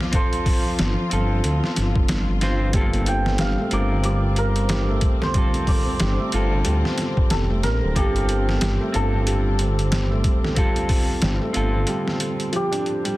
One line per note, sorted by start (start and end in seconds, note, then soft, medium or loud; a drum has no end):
0.00 2.75 F3 medium
0.00 0.10 F4 medium
0.00 2.75 F4 medium
0.00 0.11 A4 medium
0.00 1.29 D5 loud
0.00 snare soft
0.12 1.07 C4 medium
0.12 1.08 F4 medium
0.12 1.09 A4 medium
0.12 2.79 C5 loud
0.12 kick loud
0.12 closed hi-hat medium
0.33 closed hi-hat soft
0.46 kick medium
0.46 open hi-hat medium
0.79 0.96 G1 medium
0.79 snare loud
0.79 closed hi-hat medium
1.10 1.41 G1 medium
1.10 2.38 C4 medium
1.10 2.39 F4 medium
1.10 2.40 A4 medium
1.10 closed hi-hat medium
1.44 1.61 D2 medium
1.44 closed hi-hat medium
1.64 snare soft
1.76 1.94 G1 medium
1.76 snare soft
1.76 closed hi-hat medium
1.96 2.07 F1 medium
1.96 kick loud
2.08 2.72 G1 medium
2.08 snare loud
2.08 closed hi-hat medium
2.41 2.71 C4 medium
2.41 2.71 F4 medium
2.41 2.72 C5 loud
2.41 snare soft
2.41 closed hi-hat medium
2.73 3.37 G1 loud
2.73 3.38 G3 medium
2.73 3.68 A#3 medium
2.73 13.17 C4 medium
2.73 3.69 C4 medium
2.73 3.69 F4 medium
2.73 3.70 A4 medium
2.73 kick loud
2.73 closed hi-hat medium
2.93 closed hi-hat soft
3.06 5.15 G5 loud
3.06 closed hi-hat medium
3.26 snare medium
3.38 3.57 G1 medium
3.38 3.58 G3 medium
3.38 5.62 F5 loud
3.38 snare loud
3.38 closed hi-hat medium
3.59 3.71 A3 loud
3.71 5.00 G1 medium
3.71 5.31 C4 medium
3.71 5.32 F4 medium
3.71 5.32 A#4 medium
3.71 4.05 D5 loud
3.71 closed hi-hat medium
3.91 4.03 D3 medium
4.04 4.68 G3 medium
4.04 5.68 D5 loud
4.04 closed hi-hat medium
4.36 7.21 A#4 medium
4.36 closed hi-hat medium
4.56 closed hi-hat soft
4.69 4.88 G3 medium
4.69 snare loud
4.69 closed hi-hat medium
4.88 5.01 A3 loud
5.01 kick medium
5.01 closed hi-hat medium
5.22 5.34 D3 medium
5.22 7.87 C5 medium
5.22 snare soft
5.34 5.98 G3 medium
5.34 6.30 C4 medium
5.34 6.30 F4 medium
5.34 6.31 A4 medium
5.34 kick loud
5.34 closed hi-hat medium
5.54 closed hi-hat soft
5.67 8.15 D5 medium
5.67 kick medium
5.67 open hi-hat medium
5.99 6.18 G1 medium
5.99 6.18 G3 medium
5.99 snare loud
5.99 closed hi-hat medium
6.18 6.31 A3 medium
6.32 6.62 G1 medium
6.32 7.93 C4 medium
6.32 7.93 F4 medium
6.32 7.94 A4 medium
6.32 closed hi-hat medium
6.51 6.64 D3 medium
6.64 6.83 D2 medium
6.64 7.28 G3 medium
6.64 closed hi-hat medium
6.85 snare soft
6.98 snare soft
6.98 closed hi-hat medium
7.17 kick loud
7.30 7.66 F1 loud
7.30 7.49 G3 medium
7.30 7.39 A4 loud
7.30 snare loud
7.30 closed hi-hat medium
7.49 7.62 A3 loud
7.63 7.81 A#1 medium
7.63 9.01 A#4 loud
7.63 snare soft
7.63 closed hi-hat medium
7.82 7.95 D1 medium
7.82 7.95 D3 medium
7.94 8.59 G1 loud
7.94 8.59 G3 medium
7.94 8.90 C4 medium
7.94 8.91 F4 medium
7.94 11.10 G4 loud
7.94 8.92 A4 medium
7.94 kick loud
7.94 closed hi-hat medium
8.16 closed hi-hat soft
8.29 closed hi-hat medium
8.49 snare medium
8.61 8.79 G1 medium
8.61 8.79 G3 medium
8.61 snare loud
8.61 closed hi-hat medium
8.81 8.93 A3 loud
8.92 10.22 G1 medium
8.92 10.53 C4 medium
8.92 10.54 F4 medium
8.92 12.49 A4 loud
8.92 10.55 A4 medium
8.92 closed hi-hat medium
9.14 9.26 D3 medium
9.26 9.90 G3 medium
9.26 closed hi-hat medium
9.59 closed hi-hat medium
9.79 closed hi-hat medium
9.91 10.10 G3 medium
9.91 snare loud
9.91 closed hi-hat medium
10.10 10.23 A3 loud
10.24 kick medium
10.24 closed hi-hat medium
10.44 10.56 D3 medium
10.44 snare soft
10.55 11.21 G3 medium
10.55 11.50 C4 medium
10.55 11.52 F4 medium
10.55 11.52 A4 medium
10.55 kick loud
10.55 closed hi-hat medium
10.76 closed hi-hat soft
10.89 kick medium
10.89 open hi-hat medium
11.22 11.39 G1 medium
11.22 11.41 G3 medium
11.22 snare loud
11.22 closed hi-hat medium
11.41 11.53 A3 medium
11.53 11.85 G1 medium
11.53 13.14 C4 medium
11.53 13.15 F4 medium
11.53 13.15 A4 medium
11.53 closed hi-hat medium
11.74 11.86 D3 medium
11.87 12.05 G3 medium
11.87 closed hi-hat medium
12.08 snare soft
12.20 closed hi-hat medium
12.40 closed hi-hat soft
12.52 12.70 F3 loud
12.52 13.17 G4 loud
12.52 closed hi-hat medium
12.72 12.83 D4 loud
12.72 closed hi-hat medium
12.86 closed hi-hat soft
13.04 13.17 G3 loud
13.04 closed hi-hat medium